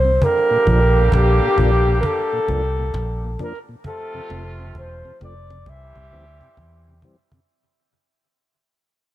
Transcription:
Already playing: fingered electric bass C2, flugelhorn C5
0.05 tonewheel organ C3
0.22 horn section D3 G3 A#3 G4, flugelhorn A#4, cajon bass
0.51 tonewheel organ A#2, cajon slap
0.67 fingered electric bass A#1, tonewheel organ F3 A#3 D4, cajon bass
0.96 tonewheel organ A#2, cajon slap
1.12 fingered electric bass A#1, flugelhorn G4, cajon bass, cajon slap
1.42 tonewheel organ A#2, cajon slap
1.58 fingered electric bass A#1, tonewheel organ F3 A#3 D4, cajon bass
1.87 tonewheel organ A#2, cajon slap
2.00 flugelhorn A#4, cajon bass
2.06 flugelhorn A4
2.33 tonewheel organ A#2
2.48 fingered electric bass C2, tonewheel organ F3 A#3 D4, cajon bass
2.79 tonewheel organ A#2
2.94 fingered electric bass A#1, cajon bass, cajon slap
3.23 tonewheel organ A#2, cajon slap
3.39 tonewheel organ F3 A#3 D4, flugelhorn A#4, cajon bass
3.69 tonewheel organ A#2
3.84 horn section C3 F3 A3 F4, flugelhorn A4, cajon bass, cajon slap
4.14 tonewheel organ F2 C3, cajon slap
4.30 fingered electric bass F1, tonewheel organ F3 A3 C4, cajon slap
4.59 tonewheel organ F2 C3, cajon slap
4.75 fingered electric bass E1, flugelhorn C5, cajon bass
5.05 tonewheel organ F2 C3, cajon slap
5.21 fingered electric bass F1, tonewheel organ F3 A3 C4, flugelhorn D5, cajon slap
5.50 tonewheel organ F2 C3, cajon slap
5.66 fingered electric bass C2, horn section E3 G3 C4 G4, flugelhorn E5, cajon bass
5.96 fingered electric bass C2, tonewheel organ C3, cajon bass
6.12 fingered electric bass D2, tonewheel organ E3 G3 C4, cajon slap
6.41 tonewheel organ C3, cajon bass
6.57 fingered electric bass E2, cajon bass
6.86 tonewheel organ C3, cajon slap
7.02 tonewheel organ E3 G3 C4, cajon bass
7.32 tonewheel organ C3, cajon bass

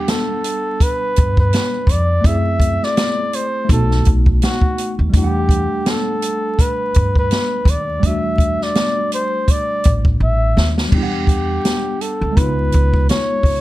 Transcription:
Already playing: tine electric piano G3 B3 D4 F#5, flugelhorn G4
0.08 flugelhorn A4, snare, closed hi-hat
0.44 closed hi-hat
0.80 flugelhorn B4, kick, closed hi-hat
1.16 upright bass G2, kick, closed hi-hat
1.37 flugelhorn B4, kick
1.53 snare, closed hi-hat
1.87 upright bass F2, flugelhorn D5, kick, closed hi-hat
2.21 upright bass F#2, tine electric piano A3 C4, kick, closed hi-hat
2.26 tine electric piano E4 G#4, flugelhorn E5
2.60 kick, closed hi-hat
2.83 flugelhorn D5, snare
2.97 snare, closed hi-hat
3.33 flugelhorn C5, closed hi-hat
3.65 tine electric piano A3 B3
3.69 upright bass B1, tine electric piano D#4 F#4, flugelhorn A4, kick, closed hi-hat
3.91 snare
4.05 upright bass B1, kick, closed hi-hat
4.26 kick
4.42 flugelhorn F#4, snare, closed hi-hat
4.61 kick
4.78 closed hi-hat
4.99 upright bass D#2
5.10 upright bass E2, tine electric piano G3 A3, kick, closed hi-hat
5.15 tine electric piano D4 E4, flugelhorn G4
5.24 tine electric piano F#5
5.49 kick, closed hi-hat
5.86 flugelhorn A4, snare, closed hi-hat
6.22 closed hi-hat
6.59 flugelhorn B4, kick, closed hi-hat
6.94 upright bass G2, kick, closed hi-hat
7.16 flugelhorn B4, kick
7.31 snare, closed hi-hat
7.65 upright bass D#2, kick, closed hi-hat
7.70 flugelhorn D5
8.00 upright bass E2, tine electric piano G3 A3, kick, closed hi-hat
8.05 tine electric piano D4 F#4, flugelhorn E5
8.38 kick, closed hi-hat
8.61 flugelhorn D5, snare
8.75 snare, closed hi-hat
9.12 flugelhorn C5, closed hi-hat
9.48 flugelhorn D5, kick, closed hi-hat
9.84 upright bass A1, kick, closed hi-hat
10.05 kick
10.20 upright bass A1, flugelhorn E5
10.57 upright bass D#2, snare
10.78 snare
10.89 upright bass E2, tine electric piano G3 B3, kick, crash
10.94 tine electric piano D4 E4, flugelhorn G4
11.03 tine electric piano F#5
11.27 kick, closed hi-hat
11.65 snare, closed hi-hat
12.01 flugelhorn A4, closed hi-hat
12.21 upright bass D2
12.32 tine electric piano G#3 B3
12.37 upright bass C#2, tine electric piano D#4 F4, flugelhorn B4, kick, closed hi-hat
12.72 upright bass C#2, kick, closed hi-hat
12.94 kick
13.09 flugelhorn C#5, snare, closed hi-hat
13.43 upright bass C#2, kick, open hi-hat

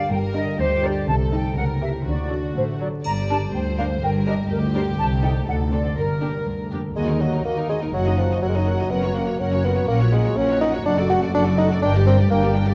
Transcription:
Already playing: harp G2 D3 D4 G4 A#4, flute section F5
0.11 double bass section G1, cello section G2, harp G2, violin section A#4, flute section G5
0.28 harp G4
0.36 viola section G3 D4, violin section A#4, flute section D#5
0.44 harp D3
0.60 cello section D2, double bass section D2, harp G4, violin section G4, flute section C5
0.77 harp F4
0.84 viola section G3 D4, violin section A#4, flute section D5
0.93 harp G4
1.08 double bass section C2, cello section C3, harp C3, violin section A4, flute section A5
1.25 harp A3
1.32 viola section G3 D#4, violin section A4, flute section G5
1.41 harp D#4 G4
1.57 double bass section C#2, cello section C#3, harp C#3, violin section A#4, flute section F#5
1.74 harp A#3
1.82 viola section G3 G4, violin section A#4, flute section E5
1.90 harp E4 G4
2.06 double bass section D2, cello section D3, harp D3, violin section F#4, flute section D5
2.23 harp A4
2.31 viola section F#3 D4, violin section A4
2.39 harp D4
2.55 double bass section A1, cello section A2, viola section A3, harp A4, flute section C5
2.72 harp G4
2.80 viola section F#3, violin section A4, flute section D5
2.89 harp A4
3.04 double bass section G1, cello section G2, harp G2, violin section D5, flute section A#5, triangle
3.21 harp G4
3.29 viola section G3 D4, violin section A#4, flute section A5
3.38 harp D3
3.53 cello section D2, double bass section D2, harp G4, violin section C5, flute section G5
3.69 harp F4
3.77 viola section G3 D4, violin section A#4, flute section F5
3.85 harp G4
4.01 double bass section G1, cello section G2, harp G2, violin section A#4, flute section G5
4.18 harp G4
4.26 viola section G3 D4, violin section A#4, flute section D#5
4.34 harp D3
4.50 double bass section D2, cello section D2, harp G4, violin section G4, flute section A#4
4.67 harp F4
4.74 viola section G3 D4, violin section A#4, flute section C5
4.83 harp G4
4.98 cello section C2, double bass section C2, harp C3, flute section A5
5.15 harp A3
5.23 viola section G3 D#4, violin section A4, flute section G5
5.31 harp D#4 G4
5.47 cello section D2, double bass section D2, harp D3, violin section A4, flute section F#5
5.64 harp D4
5.72 viola section C4 D4, violin section A4, flute section D5
5.81 harp D4 C5
5.97 double bass section G1, cello section G2, harp G2, violin section A#4, flute section A#4
6.21 viola section A#3 D4, violin section G4
6.30 harp D3
6.47 double bass section D2, cello section G2, harp A#4
6.64 harp A4
6.71 cello section F2, viola section A#3 D4, violin section G4
6.81 harp A#4
6.96 double bass section D#2, cello section D#2, harp D#3, bassoon G#3, viola section A#3, violin section F#4 D#5
7.08 viola section D#4, violin section D#4 A#4
7.20 bassoon F#3, viola section A#3, harp D#4, violin section F#4 D#5
7.33 viola section D#4, violin section D#4 A#4
7.45 double bass section D#2, cello section D#2, bassoon A#3, viola section A#3, violin section F#4 D#5, harp A#4
7.57 violin section D#4 A#4, viola section D#4
7.69 bassoon G#3, viola section A#3, harp D#4, violin section F#4 D#5
7.82 violin section D#4 A#4, viola section D#4
7.93 double bass section F#1, cello section F#2, harp F#2, bassoon F#3, viola section F#4, violin section A#4 F#5
8.06 viola section D#4, violin section F#4 D#5
8.17 bassoon F3, harp A#3, viola section F#4, violin section A#4 F#5
8.31 viola section D#4, violin section F#4 D#5
8.42 double bass section F#1, cello section F#2, bassoon F#3, viola section F#4, violin section A#4 F#5, harp A#4
8.49 bassoon G#3
8.55 bassoon F#3, viola section D#4, violin section F#4 D#5
8.67 harp A#3, viola section F#4, violin section A#4 F#5
8.78 viola section D#4, violin section F#4 D#5
8.91 double bass section F#1, cello section F#2, harp F#2, bassoon B3, viola section C#4, violin section A#4 F#5
9.03 viola section F#4, violin section C#5
9.15 bassoon A#3, harp A#3, viola section C#4, violin section A#4 F#5
9.27 viola section F#4, violin section C#5
9.39 double bass section F#1, cello section F#2, bassoon C#4, viola section C#4, violin section A#4 F#5, harp A#4
9.52 viola section F#4, violin section C#5
9.64 harp A#3, bassoon B3, viola section C#4, violin section A#4 F#5
9.76 viola section F#4, violin section C#5
9.88 double bass section A#1, cello section A#2, harp A#2, bassoon A#3, viola section C#4, violin section A#4 F#5
10.00 viola section F#4, violin section C#5
10.12 bassoon G#3, harp A#3, viola section C#4, violin section A#4 F#5
10.25 viola section F#4, violin section C#5
10.37 double bass section A#1, cello section A#2, bassoon C#4, viola section C#4, harp F#4, violin section A#4 F#5
10.49 viola section F#4, violin section C#5
10.61 harp A#3, viola section C#4, bassoon D#4, violin section A#4 F#5
10.74 viola section F#4, violin section C#5
10.85 double bass section F#1, harp F#2, cello section F#2, bassoon D4, viola section F#4, violin section A4 F#5
10.98 violin section F#4 D5, viola section A4
11.10 harp A3, bassoon F#4, viola section F#4, violin section A4 F#5
11.23 violin section F#4 D5, viola section A4
11.34 double bass section F#1, cello section F#2, bassoon D4, viola section F#4, harp A4, violin section A4 F#5
11.46 violin section F#4 D5, viola section A4
11.58 harp A3, bassoon D#4, viola section F#4, violin section A4 F#5
11.71 violin section F#4 D5, viola section A4
11.82 double bass section G1, cello section G2, harp G2, bassoon D4, viola section D4, violin section A#4 G5
11.95 viola section G4, violin section G4 D5
12.06 harp G3, bassoon C4, viola section D4, violin section A#4 G5
12.19 violin section G4 D5, viola section G4
12.30 double bass section G1, cello section G2, bassoon A#3, viola section D4, harp A#4, violin section A#4 G5
12.42 viola section G4, violin section G4 D5
12.54 harp G3, viola section D4, violin section A#4 G5
12.66 viola section G4, violin section G4 D5

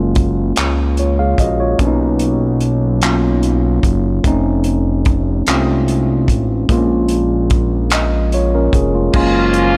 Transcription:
Already playing: analog synth bass F#1, tine electric piano G#3 A#3 C#4 F4
0.15 kick, closed hi-hat
0.56 analog synth bass C#2, clap, closed hi-hat
0.97 tine electric piano F4 C#5, closed hi-hat
1.19 tine electric piano G#4 F5
1.38 analog synth bass A#1, tine electric piano F#4 D#5, kick, closed hi-hat
1.60 tine electric piano F4 C#5
1.78 analog synth bass B1, tine electric piano F#3 A#3 C#4 D4, kick, closed hi-hat
1.87 tine electric piano D#4
2.19 closed hi-hat
2.61 closed hi-hat
3.02 tine electric piano F#3 A#3 C#4 F4, clap, closed hi-hat
3.43 closed hi-hat
3.83 analog synth bass F#1, kick, closed hi-hat
4.24 analog synth bass F1, tine electric piano A3 C4 C#4 D#4, kick, closed hi-hat
4.64 closed hi-hat
5.05 kick, closed hi-hat
5.47 analog synth bass C2, tine electric piano G#3 C4 C#4 F4, clap, closed hi-hat
5.53 tine electric piano A3
5.88 closed hi-hat
6.28 analog synth bass A1, kick, closed hi-hat
6.69 analog synth bass A#1, tine electric piano G#3 A#3 B3 F4, kick, closed hi-hat
6.77 tine electric piano C#4
7.08 closed hi-hat
7.50 kick, closed hi-hat
7.90 tine electric piano D#5, clap, closed hi-hat
8.32 tine electric piano F4 C#5, closed hi-hat
8.55 tine electric piano C#4 A#4
8.73 analog synth bass F1, tine electric piano G#4, kick, closed hi-hat
8.95 tine electric piano G#3 F4
9.13 analog synth bass F#1, horn section F3 A#3 C#4 F4, tine electric piano G#3 A#3 C#4 F4, tonewheel organ G#4 F5 G#5 A#5, kick, crash
9.54 closed hi-hat

